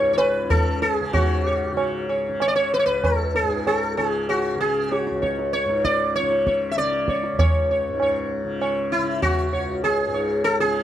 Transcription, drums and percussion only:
0.18 tabla na medium
0.50 tabla tin medium
0.50 tabla ge medium
0.82 tabla te medium
1.14 tabla na medium
1.14 tabla ge medium
1.77 tabla na medium
2.09 tabla na medium
2.40 tabla na medium
3.04 tabla na medium
3.04 tabla ge medium
3.35 tabla te medium
3.67 tabla na medium
3.98 tabla na medium
4.29 tabla na medium
4.92 tabla te medium
5.07 tabla te medium
5.23 tabla ke medium
5.39 tabla te medium
5.54 tabla te medium
5.70 tabla te medium
5.85 tabla ke medium
6.00 tabla te medium
6.16 tabla te medium
6.32 tabla te medium
6.47 tabla ke medium
6.62 tabla te medium
6.77 tabla te medium
6.92 tabla te medium
7.08 tabla ke medium
7.24 tabla te medium
7.39 tabla na loud
7.39 tabla ge medium
8.00 tabla na medium
8.62 tabla na medium
9.23 tabla na medium
9.23 tabla ge medium
9.84 tabla na medium
10.44 tabla te medium
10.75 tabla te medium

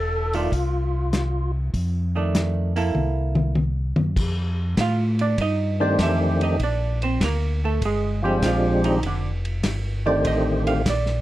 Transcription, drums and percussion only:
0.33 open hi-hat soft
0.52 kick soft
0.52 open hi-hat soft
1.13 snare medium
1.13 closed hi-hat medium
1.74 kick soft
1.74 open hi-hat soft
2.35 snare medium
2.35 closed hi-hat medium
2.76 open hi-hat soft
2.95 high tom soft
3.35 high tom medium
3.55 high tom medium
3.96 high tom medium
4.16 kick medium
4.16 crash medium
4.77 kick soft
4.77 snare medium
4.77 hi-hat pedal medium
4.77 ride medium
5.19 ride soft
5.38 kick soft
5.38 ride medium
5.99 kick soft
5.99 snare medium
5.99 hi-hat pedal soft
5.99 ride medium
6.41 ride soft
6.60 kick soft
6.60 ride soft
7.02 ride soft
7.21 kick soft
7.21 snare medium
7.21 hi-hat pedal soft
7.21 ride medium
7.82 kick soft
7.82 ride medium
8.42 kick soft
8.42 snare medium
8.42 hi-hat pedal soft
8.42 ride medium
8.84 ride soft
9.03 kick soft
9.03 ride medium
9.45 ride soft
9.63 kick soft
9.63 snare medium
9.63 hi-hat pedal medium
9.63 ride medium
10.25 kick soft
10.25 ride medium
10.67 ride soft
10.86 kick soft
10.86 snare medium
10.86 hi-hat pedal medium
10.86 ride medium
11.06 snare soft

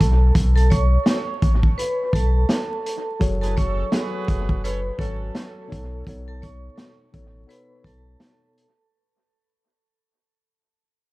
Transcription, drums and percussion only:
0.01 kick medium
0.01 closed hi-hat medium
0.35 kick loud
0.35 closed hi-hat medium
0.57 closed hi-hat medium
0.71 kick medium
0.71 closed hi-hat medium
1.06 snare loud
1.06 snare medium
1.06 closed hi-hat loud
1.42 kick loud
1.42 closed hi-hat medium
1.63 kick loud
1.79 closed hi-hat loud
2.13 kick medium
2.13 closed hi-hat medium
2.49 snare loud
2.49 closed hi-hat loud
2.86 closed hi-hat medium
3.21 kick loud
3.21 closed hi-hat medium
3.43 closed hi-hat medium
3.57 kick medium
3.57 closed hi-hat medium
3.92 snare loud
3.92 closed hi-hat loud
4.28 kick loud
4.28 closed hi-hat medium
4.49 kick loud
4.65 closed hi-hat loud
4.99 kick medium
4.99 closed hi-hat medium
5.35 snare loud
5.35 closed hi-hat loud
5.72 kick medium
5.72 closed hi-hat medium
6.07 kick loud
6.07 closed hi-hat medium
6.43 kick medium
6.43 closed hi-hat medium
6.78 snare loud
6.78 snare medium
6.78 closed hi-hat loud
7.14 kick loud
7.14 closed hi-hat medium
7.50 closed hi-hat loud
7.84 kick medium
7.84 closed hi-hat medium
8.20 snare loud
8.20 closed hi-hat loud
8.58 closed hi-hat medium

